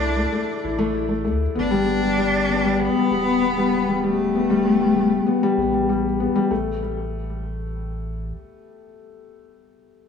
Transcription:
0.00 0.26 C2 medium
0.00 0.17 A3 loud
0.00 1.25 D4 loud
0.00 0.02 E4 medium
0.00 0.17 E4 medium
0.17 0.31 A3 medium
0.32 0.47 A3 medium
0.64 1.27 A1 medium
0.64 0.78 E4 medium
0.79 0.93 A3 loud
0.94 1.09 E4 medium
1.09 1.23 A3 medium
1.25 1.48 D2 medium
1.25 1.40 A3 medium
1.55 2.89 G1 loud
1.55 1.71 B3 medium
1.55 2.82 D4 loud
1.71 1.86 G3 loud
1.86 2.01 B3 medium
2.02 2.16 G3 medium
2.18 2.33 G3 medium
2.48 2.63 B3 medium
2.64 2.79 G3 loud
2.80 2.95 B3 medium
2.80 4.05 B3 loud
2.96 3.09 G3 medium
3.11 5.20 D1 loud
3.11 3.26 G3 medium
3.42 3.57 B3 medium
3.57 3.72 G3 loud
3.72 3.87 B3 medium
3.89 4.02 G3 medium
4.03 4.18 G3 medium
4.03 5.89 A3 loud
4.35 4.50 B3 medium
4.50 4.65 G3 loud
4.65 4.80 B3 medium
4.80 4.94 G3 medium
4.96 5.11 G3 medium
5.27 5.42 B3 medium
5.43 5.58 G3 loud
5.58 6.28 A1 loud
5.58 5.73 B3 medium
5.74 5.88 G3 medium
5.89 6.04 G3 medium
6.20 6.35 B3 medium
6.36 6.50 G3 loud
6.51 8.33 A1 medium
6.51 6.80 A3 medium

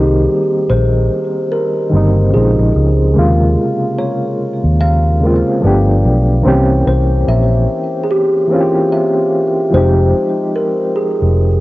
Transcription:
0.00 0.26 C2 loud
0.00 1.12 D#3 medium
0.00 1.12 G3 medium
0.00 1.13 A#3 medium
0.00 1.14 C4 medium
0.00 1.15 D#4 medium
0.00 0.72 G4 medium
0.70 1.08 A#1 medium
0.70 1.54 C5 loud
1.52 2.36 A#4 medium
1.90 2.31 G1 medium
1.90 2.24 D#3 medium
1.90 2.25 G3 medium
1.90 2.26 A#3 medium
1.95 2.26 C4 medium
1.95 2.27 D#4 medium
2.31 2.57 A#1 medium
2.31 2.98 C#3 medium
2.31 2.99 F3 medium
2.31 3.00 G#3 medium
2.31 2.95 G#4 medium
2.36 3.01 C4 medium
2.36 3.02 D#4 medium
2.59 2.74 A#1 medium
2.76 3.14 C#2 medium
3.12 4.40 C#3 medium
3.12 4.41 G#3 medium
3.12 4.42 A#3 medium
3.17 3.55 D#2 medium
3.17 4.42 C3 medium
3.17 4.43 F4 medium
3.98 4.83 C#5 medium
4.64 5.42 D#2 medium
4.81 5.99 F5 medium
5.20 5.62 C#3 medium
5.20 5.63 G#3 medium
5.20 5.63 A#3 medium
5.25 5.64 C4 medium
5.25 5.65 F4 medium
5.60 6.02 G1 loud
5.60 6.30 F3 medium
5.60 6.30 A3 medium
5.60 6.31 B3 medium
5.65 6.32 D4 medium
5.65 6.33 G4 medium
6.05 6.43 B1 loud
6.42 6.51 D#3 medium
6.42 7.70 A#3 medium
6.42 7.70 C4 medium
6.46 6.84 C2 loud
6.46 7.72 E3 medium
6.46 7.71 C#4 medium
6.46 7.72 G4 loud
6.87 7.25 C2 medium
6.87 7.25 C5 medium
7.28 7.66 A#1 loud
7.28 8.06 E5 medium
8.03 8.09 G#4 medium
8.11 8.88 G4 medium
8.47 9.45 E3 medium
8.47 9.46 A#3 medium
8.47 9.47 C4 medium
8.52 9.47 C#4 medium
8.52 8.59 F4 medium
8.61 9.51 G4 medium
8.92 9.76 E5 medium
9.70 10.12 F1 loud
9.70 10.98 F3 medium
9.70 10.99 G#3 medium
9.70 10.99 C4 medium
9.70 10.58 C5 loud
9.75 11.00 D#4 medium
9.75 11.01 G4 medium
10.56 10.98 A#4 medium
10.96 11.60 G#4 medium
11.22 11.60 F1 medium

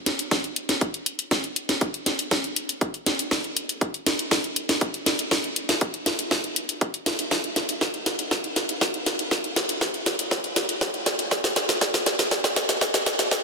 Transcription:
0.06 snare soft
0.06 closed hi-hat loud
0.19 closed hi-hat medium
0.31 kick loud
0.31 snare soft
0.31 closed hi-hat medium
0.44 closed hi-hat soft
0.56 closed hi-hat medium
0.69 snare soft
0.69 closed hi-hat medium
0.81 kick loud
0.81 closed hi-hat medium
0.94 closed hi-hat soft
1.06 closed hi-hat loud
1.19 closed hi-hat medium
1.31 kick loud
1.31 snare soft
1.31 closed hi-hat medium
1.44 closed hi-hat soft
1.56 closed hi-hat loud
1.69 snare soft
1.69 closed hi-hat medium
1.81 kick loud
1.81 closed hi-hat medium
1.94 closed hi-hat soft
2.06 snare medium
2.06 closed hi-hat loud
2.19 closed hi-hat medium
2.31 kick loud
2.31 snare medium
2.31 closed hi-hat medium
2.44 closed hi-hat soft
2.56 closed hi-hat loud
2.69 closed hi-hat medium
2.81 kick loud
2.81 closed hi-hat medium
2.94 closed hi-hat soft
3.06 snare medium
3.06 closed hi-hat loud
3.19 closed hi-hat medium
3.31 kick loud
3.31 snare medium
3.31 closed hi-hat medium
3.44 closed hi-hat soft
3.57 closed hi-hat loud
3.69 closed hi-hat medium
3.81 kick loud
3.81 closed hi-hat medium
3.94 closed hi-hat soft
4.06 snare medium
4.06 closed hi-hat loud
4.19 closed hi-hat medium
4.31 kick loud
4.31 snare medium
4.31 closed hi-hat medium
4.44 closed hi-hat soft
4.56 closed hi-hat loud
4.69 snare medium
4.69 closed hi-hat medium
4.81 kick loud
4.81 closed hi-hat medium
4.94 closed hi-hat soft
5.06 snare medium
5.06 closed hi-hat loud
5.19 closed hi-hat medium
5.31 kick loud
5.31 snare medium
5.31 closed hi-hat medium
5.44 closed hi-hat soft
5.56 closed hi-hat loud
5.69 snare medium
5.69 closed hi-hat medium
5.81 kick loud
5.81 closed hi-hat soft
5.94 closed hi-hat soft
6.06 snare medium
6.06 closed hi-hat loud
6.19 closed hi-hat medium
6.31 kick loud
6.31 snare medium
6.31 closed hi-hat medium
6.44 closed hi-hat soft
6.56 closed hi-hat loud
6.69 closed hi-hat medium
6.81 kick loud
6.81 closed hi-hat medium
6.94 closed hi-hat soft
7.06 snare medium
7.06 closed hi-hat loud
7.19 closed hi-hat medium
7.31 kick loud
7.31 snare medium
7.31 closed hi-hat medium
7.44 closed hi-hat soft
7.56 snare medium
7.56 closed hi-hat loud
7.69 closed hi-hat medium
7.81 kick loud
7.81 snare medium
7.81 closed hi-hat medium
7.94 closed hi-hat soft
8.06 snare medium
8.06 closed hi-hat loud
8.19 closed hi-hat medium
8.31 kick loud
8.31 snare medium
8.31 closed hi-hat soft
8.44 closed hi-hat soft
8.56 snare medium
8.56 closed hi-hat loud
8.69 closed hi-hat medium
8.81 kick loud
8.81 snare medium
8.81 closed hi-hat medium
8.94 closed hi-hat soft
9.06 snare medium
9.06 closed hi-hat loud
9.19 closed hi-hat medium
9.31 kick loud
9.31 snare medium
9.31 closed hi-hat medium
9.44 closed hi-hat soft
9.56 snare medium
9.56 closed hi-hat loud
9.69 closed hi-hat medium
9.81 kick loud
9.81 snare medium
9.81 closed hi-hat medium
9.94 closed hi-hat soft
10.06 snare medium
10.06 closed hi-hat loud
10.19 closed hi-hat medium
10.31 kick loud
10.31 snare medium
10.31 closed hi-hat medium
10.44 closed hi-hat soft
10.56 snare medium
10.56 closed hi-hat loud
10.69 closed hi-hat medium
10.81 kick loud
10.81 snare medium
10.81 closed hi-hat medium
10.94 closed hi-hat soft
11.06 snare medium
11.06 closed hi-hat loud
11.19 closed hi-hat medium
11.31 kick loud
11.31 snare medium
11.31 closed hi-hat medium
11.44 snare medium
11.44 closed hi-hat soft
11.56 snare medium
11.56 closed hi-hat loud
11.69 snare medium
11.69 closed hi-hat medium
11.81 kick loud
11.81 snare medium
11.81 closed hi-hat medium
11.94 snare medium
11.94 closed hi-hat soft
12.06 snare medium
12.06 closed hi-hat loud
12.19 snare medium
12.19 closed hi-hat medium
12.31 kick loud
12.31 snare medium
12.31 closed hi-hat medium
12.44 snare medium
12.44 closed hi-hat soft
12.56 snare loud
12.56 closed hi-hat loud
12.69 snare medium
12.69 closed hi-hat medium
12.81 kick loud
12.81 snare loud
12.81 closed hi-hat medium
12.94 snare medium
12.94 closed hi-hat soft
13.06 snare loud
13.06 closed hi-hat loud
13.19 snare medium
13.19 closed hi-hat medium
13.31 kick loud
13.31 snare loud
13.31 closed hi-hat medium

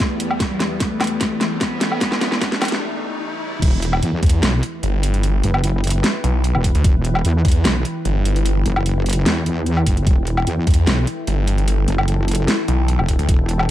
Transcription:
0.00 3.58 E2 medium
0.00 3.58 E3 medium
0.00 3.58 G3 medium
0.00 0.32 A3 loud
0.00 0.37 B3 medium
0.00 riser medium
0.20 closed hi-hat medium
0.31 low woodblock medium
0.40 0.77 G3 loud
0.40 3.59 A3 medium
0.40 kick loud
0.40 snare medium
0.40 closed hi-hat medium
0.60 snare medium
0.60 closed hi-hat medium
0.80 1.53 A3 loud
0.80 kick loud
0.80 snare medium
0.80 closed hi-hat medium
1.01 snare medium
1.01 closed hi-hat medium
1.01 low woodblock medium
1.04 closed hi-hat medium
1.07 closed hi-hat medium
1.21 kick loud
1.21 snare medium
1.21 closed hi-hat medium
1.41 snare medium
1.41 closed hi-hat medium
1.61 2.82 B3 loud
1.61 kick medium
1.61 snare medium
1.61 closed hi-hat medium
1.81 snare medium
1.81 closed hi-hat medium
1.92 low woodblock medium
2.01 kick loud
2.01 snare medium
2.01 closed hi-hat medium
2.12 snare medium
2.21 snare medium
2.21 closed hi-hat medium
2.32 snare medium
2.41 kick loud
2.41 snare loud
2.41 closed hi-hat medium
2.52 snare medium
2.62 snare loud
2.62 closed hi-hat medium
2.62 low woodblock medium
2.65 closed hi-hat medium
2.68 snare medium
2.68 closed hi-hat medium
3.62 4.01 E1 loud
3.62 13.71 E3 medium
3.62 13.71 E4 medium
3.62 10.05 B4 medium
3.62 13.71 G5 medium
3.62 kick loud
3.62 closed hi-hat medium
3.62 crash loud
3.82 closed hi-hat medium
3.93 low woodblock medium
4.03 4.21 E2 loud
4.03 closed hi-hat medium
4.23 4.41 E2 loud
4.23 kick loud
4.23 closed hi-hat medium
4.26 closed hi-hat medium
4.29 closed hi-hat medium
4.43 4.61 B1 loud
4.43 snare loud
4.43 closed hi-hat medium
4.63 closed hi-hat medium
4.83 5.42 G1 loud
4.83 closed hi-hat medium
5.03 closed hi-hat medium
5.14 closed hi-hat soft
5.23 closed hi-hat medium
5.43 6.02 F#1 loud
5.43 closed hi-hat medium
5.54 low woodblock medium
5.64 closed hi-hat medium
5.84 closed hi-hat medium
5.87 closed hi-hat medium
5.90 closed hi-hat medium
6.04 snare loud
6.04 closed hi-hat medium
6.24 6.53 B1 medium
6.24 closed hi-hat medium
6.44 closed hi-hat medium
6.55 6.73 E1 loud
6.55 low woodblock medium
6.64 kick medium
6.64 closed hi-hat medium
6.75 6.83 D2 loud
6.75 closed hi-hat soft
6.84 7.23 E1 loud
6.84 kick loud
6.84 closed hi-hat medium
7.05 closed hi-hat medium
7.15 low woodblock medium
7.25 7.43 E2 loud
7.25 closed hi-hat medium
7.45 7.63 E2 loud
7.45 kick loud
7.45 closed hi-hat medium
7.48 closed hi-hat medium
7.52 closed hi-hat medium
7.65 7.84 B1 loud
7.65 snare loud
7.65 closed hi-hat medium
7.85 closed hi-hat medium
8.05 8.64 G1 loud
8.05 closed hi-hat medium
8.25 closed hi-hat medium
8.36 closed hi-hat soft
8.46 closed hi-hat medium
8.66 9.25 F#1 loud
8.66 closed hi-hat medium
8.76 low woodblock medium
8.86 closed hi-hat medium
9.06 closed hi-hat soft
9.10 closed hi-hat medium
9.13 closed hi-hat medium
9.26 9.85 E2 loud
9.26 snare loud
9.26 closed hi-hat medium
9.46 closed hi-hat medium
9.66 closed hi-hat medium
9.77 low woodblock medium
9.86 10.05 F#1 loud
9.86 kick medium
9.86 closed hi-hat medium
9.97 closed hi-hat soft
10.07 10.45 E1 loud
10.07 13.71 A4 medium
10.07 kick loud
10.07 closed hi-hat medium
10.27 closed hi-hat soft
10.37 low woodblock medium
10.47 10.66 E2 loud
10.47 closed hi-hat medium
10.67 10.86 E2 loud
10.67 kick loud
10.67 closed hi-hat soft
10.71 closed hi-hat medium
10.74 closed hi-hat medium
10.87 11.06 B1 loud
10.87 snare loud
10.87 closed hi-hat medium
11.07 closed hi-hat medium
11.27 11.86 G1 loud
11.27 closed hi-hat medium
11.48 closed hi-hat medium
11.58 closed hi-hat soft
11.68 closed hi-hat medium
11.88 12.47 F#1 loud
11.88 closed hi-hat medium
11.98 low woodblock medium
12.08 closed hi-hat medium
12.28 closed hi-hat soft
12.32 closed hi-hat medium
12.35 closed hi-hat medium
12.48 snare loud
12.48 closed hi-hat medium
12.68 12.97 B1 loud
12.68 closed hi-hat soft
12.88 closed hi-hat medium
12.99 13.17 E1 loud
12.99 low woodblock medium
13.09 kick medium
13.09 closed hi-hat medium
13.19 13.27 D2 loud
13.19 closed hi-hat soft
13.29 13.67 E1 loud
13.29 kick loud
13.29 closed hi-hat medium
13.49 closed hi-hat medium
13.59 low woodblock medium

